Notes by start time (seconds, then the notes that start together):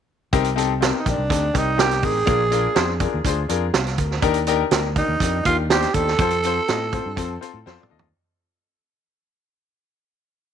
0.33 C2 C3 C4 D#4 G4 A#4, kick, closed hi-hat
0.44 closed hi-hat
0.56 C4 D#4 G4 A4, closed hi-hat
0.81 C4 D#4 G4 A#4, snare, closed hi-hat
1.00 D#4
1.05 A#1 C4 D#4 G4 A#4, kick, closed hi-hat
1.09 D4
1.18 C2
1.29 D2 C4 D#4 G4 A4, kick, closed hi-hat
1.54 C2 C4 D#4 G4 A#4, kick, closed hi-hat
1.78 C4 D#4 G4 A#4, snare, closed hi-hat
1.91 snare, closed hi-hat
2.02 A1 C4 D#4 G4 G#4 A#4, kick, open hi-hat
2.26 A#1 A#2 D4 F4 G#4 A#4, kick, closed hi-hat
2.51 D4 F4 G#4 A#4, closed hi-hat
2.75 F2 D4 F4 G#4 C5, snare, closed hi-hat
3.00 D4 F4 G#4 A#4, kick, closed hi-hat
3.14 D#2
3.25 D2 D4 F4 G#4 C5, kick, closed hi-hat
3.49 F2 D4 F4 G#4 A#4, closed hi-hat
3.73 C2 F5, snare, closed hi-hat
3.87 snare, closed hi-hat
3.98 D2 A#4, kick, closed hi-hat
4.11 snare
4.22 D#2 D#3 D4 D#4 G4 A#4, kick, closed hi-hat
4.34 closed hi-hat
4.47 D4 D#4 G4 A#4, closed hi-hat
4.71 D2 D4 D#4 G4 A#4, snare, closed hi-hat
4.96 D4 D#4 G4 A#4, kick, closed hi-hat
5.09 D#2
5.20 F2 D4 D#4 G4 A#4, kick, closed hi-hat
5.45 D#2 D4 D#4 F4 G4 A#4, kick, closed hi-hat
5.70 D4 D#4 G4 C5, snare, closed hi-hat
5.82 snare, closed hi-hat
5.94 D#2 D4 D#4 G4 A4 C5, kick, closed hi-hat
6.08 snare
6.19 F2 C4 F4 A4 C5, kick, closed hi-hat
6.30 closed hi-hat
6.43 C4 F4 A4 C5, closed hi-hat
6.68 A2 C4 F4 A4 D#5, snare, closed hi-hat
6.92 C4 F4 A4 C5, kick, closed hi-hat
7.06 G2
7.16 F2 C4 F4 A4 C5, kick, closed hi-hat
7.41 C4 F4 A4 C5 A5, muted fingered electric bass stroke, closed hi-hat
7.54 A2
7.66 F2 C4 F4 A4 C5 F5, snare
7.80 D5, mid tom
7.89 D#2 C4 F4 A4 D#5
7.99 floor tom